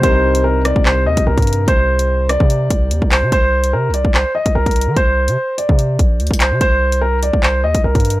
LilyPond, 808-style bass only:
\new Staff \with { instrumentName = "808-style bass" } { \clef bass \time 4/4 \key c \minor \tempo 4 = 146 c,4.~ c,16 c,8. ees,16 c,16 c,16 g,8. | c,4.~ c,16 c8. c,8 ees,16 c,8 c16 | c,4 c16. c,16. c,8 r8 c,16 c,16 c,8 ees16 | c,8. c16 r8. c8. bes,,8 d,16 c,8 c16 |
c,4.~ c,16 c,8. ees,16 c,16 c,16 g,8. | }